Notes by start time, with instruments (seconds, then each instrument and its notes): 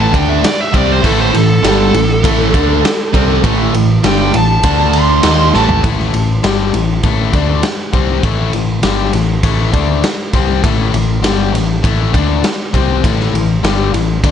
Already playing: picked electric bass A1, overdriven electric guitar A2 E3 A3
0.00 lead electric guitar A5
0.13 picked electric bass D2, overdriven electric guitar D3 A3 D4, lead electric guitar G5, kick, ride
0.29 lead electric guitar E5
0.43 lead electric guitar D5, muted overdriven electric guitar stroke, muted picked electric bass stroke, snare, ride
0.61 lead electric guitar E5
0.73 picked electric bass C2, overdriven electric guitar C3 G3 C4, lead electric guitar D5, kick, ride
0.92 lead electric guitar C5
1.03 picked electric bass A1, overdriven electric guitar A2 E3 A3, lead electric guitar A4, kick, crash
1.21 lead electric guitar C5
1.34 picked electric bass A1, overdriven electric guitar A2 E3, lead electric guitar A4, ride
1.64 picked electric bass G1, overdriven electric guitar G2 D3 G3, lead electric guitar A4, snare, ride
1.93 picked electric bass A1, overdriven electric guitar A2 E3, ride
2.24 picked electric bass A1, overdriven electric guitar A2 E3 A3, kick, ride
2.54 picked electric bass D2, overdriven electric guitar D3 A3 D4, kick, ride
2.84 muted overdriven electric guitar stroke, muted picked electric bass stroke, snare, ride
3.13 picked electric bass C2, overdriven electric guitar C3 G3 C4, kick, ride
3.44 picked electric bass A1, overdriven electric guitar A2 E3 A3, kick, ride
3.74 picked electric bass A1, overdriven electric guitar A2 E3, ride
4.04 picked electric bass G1, overdriven electric guitar G2 D3 G3, lead electric guitar G5, snare, ride
4.33 picked electric bass A1, overdriven electric guitar A2 E3, lead electric guitar A5, ride
4.63 picked electric bass D2, overdriven electric guitar D3 A3 D4, kick, ride
4.93 lead electric guitar C6, ride
5.23 picked electric bass D#2, overdriven electric guitar D#3 A#3 D#4, snare, ride
5.54 picked electric bass A1, overdriven electric guitar A2 E3 A3, lead electric guitar A5, snare
5.69 floor tom
5.83 picked electric bass A1, overdriven electric guitar A2 E3 A3, kick, ride
5.99 snare
6.13 picked electric bass A1, overdriven electric guitar A2 E3, ride
6.43 picked electric bass G1, overdriven electric guitar G2 D3 G3, snare, ride
6.74 picked electric bass A1, overdriven electric guitar A2 E3, ride
7.03 picked electric bass A1, overdriven electric guitar A2 E3 A3, kick, ride
7.33 picked electric bass D2, overdriven electric guitar D3 A3 D4, kick, ride
7.63 muted overdriven electric guitar stroke, muted picked electric bass stroke, snare, ride
7.93 picked electric bass C2, overdriven electric guitar C3 G3 C4, kick, ride
8.23 picked electric bass A1, overdriven electric guitar A2 E3 A3, kick, ride
8.53 picked electric bass A1, overdriven electric guitar A2 E3, ride
8.83 picked electric bass G1, overdriven electric guitar G2 D3 G3, snare, ride
9.13 picked electric bass A1, overdriven electric guitar A2 E3, snare, ride
9.43 picked electric bass A1, overdriven electric guitar A2 E3 A3, kick, ride
9.73 picked electric bass D2, overdriven electric guitar D3 A3 D4, kick, ride
10.04 muted picked electric bass stroke, muted overdriven electric guitar stroke, snare, ride
10.33 picked electric bass C2, overdriven electric guitar C3 G3 C4, kick, ride
10.63 picked electric bass A1, overdriven electric guitar A2 E3 A3, kick, ride
10.93 picked electric bass A1, overdriven electric guitar A2 E3, ride
11.22 picked electric bass G1, overdriven electric guitar G2 D3 G3, snare, ride
11.53 picked electric bass A1, overdriven electric guitar A2 E3, snare, ride
11.83 picked electric bass A1, overdriven electric guitar A2 E3 A3, kick, ride
12.12 picked electric bass D2, overdriven electric guitar D3 A3 D4, kick, ride
12.43 muted picked electric bass stroke, muted overdriven electric guitar stroke, snare, ride
12.73 picked electric bass C2, overdriven electric guitar C3 G3 C4, kick, ride
13.04 picked electric bass A1, overdriven electric guitar A2 E3 A3, kick, ride
13.20 snare
13.33 picked electric bass A1, overdriven electric guitar A2 E3, ride
13.63 picked electric bass G1, overdriven electric guitar G2 D3 G3, snare, ride
13.92 picked electric bass A1, overdriven electric guitar A2 E3, ride
14.24 picked electric bass D2, overdriven electric guitar D3 A3 D4, kick, ride